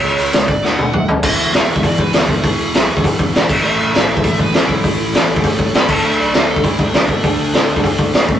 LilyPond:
<<
  \new Staff \with { instrumentName = "Lead electric guitar" } { \time 4/4 \key d \lydian \tempo 4 = 200 cis''4. d''8 fis''4. r8 | e''2 d''8 b'8 gis'4~ | gis'2 r2 | e''2 e''8 b'8 e'4~ |
e'2 r4 b''8 a''8 | e''8 d''8 b'8 a'8 e'8 d'8 d'4~ | d'2 r2 | }
  \new Staff \with { instrumentName = "Overdriven electric guitar" } { \clef bass \time 4/4 \key d \lydian <cis gis cis'>4 <cis gis>8 r8 <d a d'>4 <d a>8 r8 | <e, b, e>4 <e, b, e>4 <e, b, e>4 <e, b, e>4 | <e, b, e>4 <e, b, e>4 <e, b, e>4 <e, b, e>8 r8 | <a, e a>4 <a, e a>4 <a, e a>4 <a, e a>4 |
<a, e a>4 <a, e a>4 <a, e a>4 <a, e a>8 r8 | <d a d'>4 <d a d'>4 <d a d'>4 <d a d'>4 | <d a d'>4 <d a d'>4 <d a d'>4 <d a d'>8 r8 | }
  \new Staff \with { instrumentName = "Picked electric bass" } { \clef bass \time 4/4 \key d \lydian cis,8 cis,8 cis,8 d,8 d,8 d,8 d,8 fis,8 | e,,8 d,8 e,,8 e,,8 e,,8 e,,8 d,8 d,8 | e,,8 e,,8 b,,8 e,,8 e,,8 e,,8 e,,8 a,,8 | a,,8 fis,,8 a,,8 a,,8 a,,8 a,,8 fis,,8 fis,8 |
a,,8 a,,8 e,8 a,,8 a,,8 a,,8 e,8 d,8 | d,8 b,,8 d,8 d,8 d,8 d,8 b,,8 b,8 | d,8 d,8 a,8 d,8 d,8 d,8 gis,,8 a,,8 | }
  \new DrumStaff \with { instrumentName = "Drums" } \drummode { \time 4/4 r8 hho8 <hho sn>8 <hho bd>8 sn8 tommh8 toml8 tomfh8 | <cymc bd>4 <hho sn>8. bd16 <hho bd>8 bd8 <hho sn>8 bd8 | <hho bd>4 <hho sn>8. bd16 <hho bd>8 bd8 <hho sn>8 <cymc bd>8 | r4 <hho sn>8. bd16 <hho bd>8 bd8 <hho sn>8 bd8 |
<hho bd>4 <hho sn>8. bd16 <hho bd>8 bd8 <hho sn>8 <cymc bd>8 | r4 <hho sn>8. bd16 <hho bd>8 bd8 <hho sn>8 bd8 | <hho bd>4 <hho sn>8. bd16 <hho bd>8 bd8 <hho sn>8 bd8 | }
>>